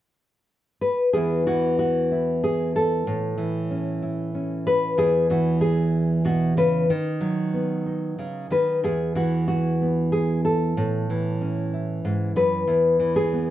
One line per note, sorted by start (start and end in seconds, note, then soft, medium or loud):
0.81 1.13 B4 medium
1.13 3.07 E2 medium
1.13 1.46 E3 soft
1.13 3.04 B3 soft
1.13 2.11 E4 soft
1.13 1.46 G#4 medium
1.46 3.37 E3 medium
1.46 1.78 F#4 medium
1.79 2.43 F#4 medium
2.12 4.02 E4 soft
2.44 2.75 G#4 medium
2.76 4.35 A4 medium
3.07 4.95 A2 medium
3.38 5.29 E3 medium
3.71 4.33 C#4 soft
4.02 4.95 E4 soft
4.35 4.95 C#4 soft
4.67 4.98 B4 medium
4.98 6.89 E2 medium
4.98 5.30 G#4 medium
5.30 6.90 E3 medium
5.30 5.61 F#4 medium
5.61 6.25 G#4 medium
6.25 6.57 B2 medium
6.25 6.57 F#4 medium
6.57 6.89 C#3 medium
6.57 8.18 B4 medium
6.90 8.18 D#3 medium
7.21 8.79 F#3 medium
7.54 8.79 B3 soft
7.86 8.79 D#4 soft
8.18 8.50 C#3 medium
8.50 8.83 D#3 soft
8.50 8.84 B4 medium
8.83 10.77 E2 medium
8.83 9.16 G#4 medium
9.15 11.09 E3 medium
9.15 9.47 F#4 medium
9.48 10.12 F#4 medium
9.82 10.74 B3 soft
10.12 10.44 G#4 medium
10.45 12.04 A4 medium
10.77 12.04 A2 medium
11.10 12.99 E3 medium
11.41 12.64 C#4 soft
11.74 13.50 E4 soft
12.05 12.35 G#2 medium
12.36 12.67 F#2 medium
12.36 13.15 B4 loud
12.67 13.50 E2 medium
12.99 13.50 E3 medium
13.16 13.50 G#4 medium
13.33 13.50 B3 soft